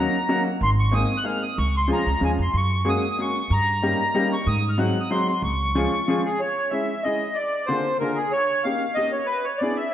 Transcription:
Already playing: F#3 A#3 C#4 D#4 F#4 A#5
0.29 F#3 A#3 C#4 D#4 F#4
0.61 G#1 C6
0.80 C#6
0.91 G#3 A#3 C4 D#4 G#4 D#6
1.18 F#6
1.24 G#3 A#3 C4 D#4 G#4 F6
1.43 D#6
1.58 C#2 C#6
1.77 C6
1.88 F3 G#3 C#4 F4 G#4
1.93 A#5
2.06 C#2
2.21 D#2 F3 G#3 C#4 F4 G#4 G#5
2.39 F2 C6
2.54 F#2 C#6
2.85 G#3 A#3 C#4 F#4 G#4
2.89 D#6
3.19 G#3 A#3 C#4 F#4 G#4 C#6
3.50 G2 A#5
3.82 G3 A#3 C#4 D#4 G4
4.14 G3 A#3 C#4 D#4 G4
4.33 C#6
4.47 G#2 D#6
4.69 F6
4.78 F#3 G#3 C4 D#4 F#4 F#6
5.00 D#6
5.11 F#3 G#3 C4 D#4 F#4 C6
5.29 C6
5.42 C#2 C#6
5.75 F3 G#3 C#4 F4 G#4
6.08 F3 G#3 C#4 F4 G#4
6.25 G#4
6.40 C#5
6.70 G#3 C#4 E4 G#4 E5
7.03 G#3 C#4 E4 G#4 D#5
7.34 D5
7.66 D3 A#3 D4 F4 G#4 C5
8.00 D3 A#3 D4 F4 G#4 A#4
8.15 G#4
8.32 C#5
8.63 A#3 C#4 D#4 G4 F5
8.95 A#3 C#4 D#4 G4 D#5
9.12 C#5
9.26 B4
9.44 C#5
9.58 B3 D4 E4 D5
9.63 G#4
9.77 E5

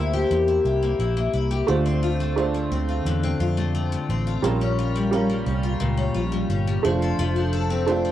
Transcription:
Already playing: D2 C3 A#3 E4 G4 C5
0.13 G4
0.30 E2 C3
0.48 E4
0.65 C2 G4
0.83 A#3
0.99 A#1 E4
1.17 A#3
1.33 C2 E4
1.51 G4
1.67 D2 D3 A3 D4 F4 C5
1.86 C4
2.03 F4
2.20 A3
2.36 A3 C4 D4 F4 C5
2.54 A3
2.71 D2 C4
2.89 F4
3.05 E2 D3
3.24 C4
3.40 F2 F4
3.57 A3
3.75 C4
3.92 A3
4.09 A1 C4
4.27 F4
4.42 A#1 A#2 G3 C#4 F4 A#4
4.61 C#4
4.79 F4
4.96 G3
5.11 G3 C#4 F4 A#4
5.30 G3
5.47 C2 C#4
5.64 F4
5.80 C#2 A#2
5.98 C#4
6.15 A#1 F4
6.32 G3
6.49 G1 C#4
6.67 G3
6.83 F1 F3 A3 D4 F4 C5
7.02 A4
7.19 F1 F3
7.36 D4
7.53 A4
7.70 C4
7.87 A3 D4 F4 C5
8.05 C4

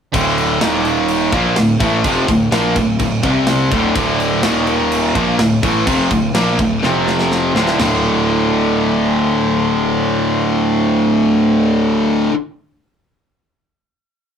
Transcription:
0.14 D1 D2 A2 D3, kick, crash
0.38 crash
0.60 D#1 D#2 A#2 D#3, snare, crash
0.85 crash
1.08 crash
1.32 A#1 A#2 F3 A#3, kick, crash
1.56 D1 D2 A2, snare, crash
1.79 A1 A2 E3 A3, kick, crash
2.03 F1 F2 C3 F3, kick, crash
2.28 D1 D2 A2, kick, crash
2.51 A#1 A#2 F3 A#3, snare, crash
2.76 D1 D2 A2, kick, crash
2.99 D1 D2 A2, kick, crash
3.23 C2 C3 G3 C4, kick, crash
3.47 snare, crash
3.71 D1 D2 A2 D3, kick, crash
3.94 D1 D2 A2 D3, kick, crash
4.20 crash
4.42 D#1 D#2 A#2 D#3, snare, crash
4.67 crash
4.92 crash
5.15 A#1 A#2 F3 A#3, kick, crash
5.38 D1 D2 A2, snare, crash
5.63 A1 A2 E3 A3, kick, crash
5.86 F1 F2 C3 F3, kick, crash
6.10 D1 D2 A2, kick, crash
6.34 A#1 A#2 F3 A#3, snare, crash
6.58 D1 D2 A2, kick, crash
6.82 F1 F2 C3 F3, snare
7.08 snare
7.19 snare
7.32 snare
7.54 D1 D2 A2 D3, snare
7.67 snare
7.77 D1 D2 A2 D3, snare, floor tom, crash

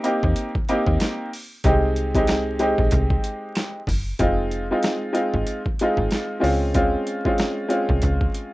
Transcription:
0.04 A#3 C4 D#4 G4, closed hi-hat
0.23 D#2, kick
0.36 closed hi-hat
0.55 kick
0.69 A#3 C4 D#4 G4, closed hi-hat
0.87 D#2, kick
1.00 finger snap, snare, closed hi-hat
1.33 open hi-hat
1.64 C2 G#3 C4 D#4 G4, kick, closed hi-hat
1.96 closed hi-hat
2.15 G#3 C4 D#4 G4, kick, closed hi-hat
2.27 finger snap, snare, closed hi-hat
2.59 G#3 C4 D#4 G4, closed hi-hat
2.78 A#1, kick
2.91 C2, kick, closed hi-hat
3.10 kick
3.24 closed hi-hat
3.55 finger snap, snare, closed hi-hat
3.87 F#1, kick, open hi-hat
4.19 F1 G#3 C4 D#4 F4, kick, closed hi-hat
4.51 closed hi-hat
4.71 G#3 C4 D#4 F4
4.83 snare, closed hi-hat
5.13 G#3 C4 D#4 F4, closed hi-hat
5.34 G#1, kick
5.47 closed hi-hat
5.66 kick
5.79 G#3 C4 D#4 F4, closed hi-hat
5.97 G#1, kick
6.11 snare, closed hi-hat
6.40 C#2 G#3 C4 C#4 F4
6.44 open hi-hat
6.74 G#3 C4 C#4 F4, kick, closed hi-hat
7.07 closed hi-hat
7.25 G#3 C4 C#4 F4, kick
7.38 snare, closed hi-hat
7.68 G#3 C4 C#4 F4, closed hi-hat
7.89 C2, kick
8.02 C#2, kick, closed hi-hat
8.21 kick
8.35 closed hi-hat

